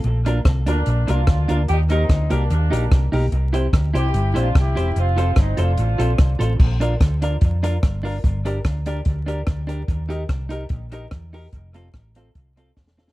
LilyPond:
<<
  \new Staff \with { instrumentName = "Clean electric guitar" } { \time 4/4 \key bes \major \tempo 4 = 146 r8 <d' f' bes'>8 r8 <d' f' bes'>8 r8 <d' f' bes'>8 r8 <d' f' bes'>8 | r8 <ees' g' bes'>8 r8 <ees' g' bes'>8 r8 <ees' g' bes'>8 r8 <ees' g' bes'>8 | r8 <e' g' c''>8 r8 <e' g' c''>8 r8 <e' g' c''>8 r8 <e' g' c''>8 | r8 <f' a' c''>8 r8 <f' a' c''>8 r8 <f' a' c''>8 r8 <f' a' c''>8 |
r8 <d' f' bes'>8 r8 <d' f' bes'>8 r8 <d' f' bes'>8 r8 <d' f' bes'>8 | r8 <d' g' bes'>8 r8 <d' g' bes'>8 r8 <d' g' bes'>8 r8 <d' g' bes'>8 | r8 <ees' g' bes'>8 r8 <ees' g' bes'>8 r8 <ees' g' bes'>8 r8 <ees' g' bes'>8 | r8 <c' f' a'>8 r8 <c' f' a'>8 r8 <c' f' a'>8 r8 <c' f' a'>8 | }
  \new Staff \with { instrumentName = "Upright piano" } { \time 4/4 \key bes \major r8 <bes d' f' bes'>8 r8 <bes d' f' bes'>8 r8 <bes d' f' bes'>8 r8 <bes d' f' bes'>8 | r8 <bes ees' g' bes'>8 r8 <bes ees' g' bes'>8 r8 <bes ees' g' bes'>8 r8 <bes ees' g' bes'>8 | r8 <c' e' g' c''>8 r8 <c' e' g' c''>8 r8 <c' e' g' c''>8 r8 <c' e' g' c''>8 | r8 <c' f' a' c''>8 r8 <c' f' a' c''>8 r8 <c' f' a' c''>8 r8 <c' f' a' c''>8 |
r8 <d' f' bes' d''>8 r8 <d' f' bes' d''>8 r8 <d' f' bes' d''>8 r8 <d' f' bes' d''>8 | r8 <d' g' bes' d''>8 r8 <d' g' bes' d''>8 r8 <d' g' bes' d''>8 <bes' d''>8 <d' g' bes' d''>8 | r8 <ees' g' bes' ees''>8 r8 <ees' g' bes' ees''>8 r8 <ees' g' bes' ees''>8 r8 <ees' g' bes' ees''>8 | r8 <f' a' c'' f''>8 r8 <f' a' c'' f''>8 r8 <f' a' c'' f''>8 <c'' f''>8 <f' a' c'' f''>8 | }
  \new Staff \with { instrumentName = "Horn section" } { \time 4/4 \key bes \major r4. <bes d'>4 <d' f'>4 <d' f'>8 | <ees' g'>8 <c' ees'>4 <bes d'>8 <bes d'>4. r8 | r4. <e' g'>4 <d' f'>8 <e' g'>4 | <c' f'>4 <c' ees'>8 <d' f'>2 r8 |
r1 | r1 | r1 | r1 | }
  \new Staff \with { instrumentName = "Fingered electric bass" } { \clef bass \time 4/4 \key bes \major bes,,4 c,8 d,8 bes,,8 c,8 d,8 d,8 | ees,4 d,8 c,8 ees,8 bes,,8 c,8 ces,8 | c,4 d,8 c,8 g,,8 bes,,8 c,8 e,,8 | f,,4 g,,8 f,,8 a,,8 bes,,8 c,8 a,,8 |
bes,,4 d,4 f,4 g,,4 | g,,4 d,4 d,4 d,4 | ees,4 c,4 bes,,4 e,4 | f,,4 a,,4 c,4 e,,4 | }
  \new DrumStaff \with { instrumentName = "Drums" } \drummode { \time 4/4 hh8 hh8 <hh bd ss>8 hh8 hh8 hh8 <hh bd ss>8 hh8 | hh8 hh8 <hh bd ss>8 hh8 hh8 hh8 <hh bd ss>8 hho8 | hh8 hh8 <hh bd ss>8 hh8 hh8 hh8 <hh bd ss>8 hh8 | hh8 hh8 <hh bd ss>8 hh8 hh8 hh8 <hh bd ss>8 hh8 |
<cymc bd>8 hh8 <hh bd ss>8 hh8 <hh bd>8 hh8 <hh bd ss>8 hho8 | <hh bd>8 hh8 <hh bd ss>8 hh8 <hh bd>8 hh8 <hh bd ss>8 hh8 | <hh bd>8 hh8 <hh bd ss>8 hh8 <hh bd>8 hh8 <hh bd ss>8 hho8 | <hh bd>8 hh8 <hh bd ss>8 hh8 <hh bd>8 hh8 <bd sn>16 sn16 sn16 sn16 | }
>>